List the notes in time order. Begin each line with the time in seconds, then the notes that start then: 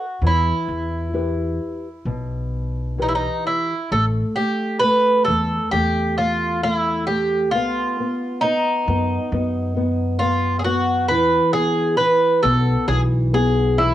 Already playing: F#4
0.21 E2 E3
0.27 E4
0.68 E2
1.13 E4 G4 B4
2.05 B1 B2
2.98 E3 D#4 G4 B4
3.09 E4
3.15 D#4
3.47 E4
3.92 A1 A3 A4
4.36 A3 G4
4.80 A3 B4
5.25 E2 A4
5.29 A3
5.71 E2 A3 G4
6.18 A3 F4
6.63 A3 F4
6.74 E4
7.07 A3 G4
7.51 B1 F4
7.55 B3
8.00 B3
8.41 B3 D#4
8.88 F#2 B3
9.32 F#2 B3
9.77 B3
10.19 B3 F4
10.59 G#4
10.64 B3 F#4
11.08 E2 E3 B4
11.53 B3 G#4
11.97 E3 B4
12.43 B1 B3 A4
12.88 B1 E3 G#4
13.33 B3 G#4
13.78 E3 E4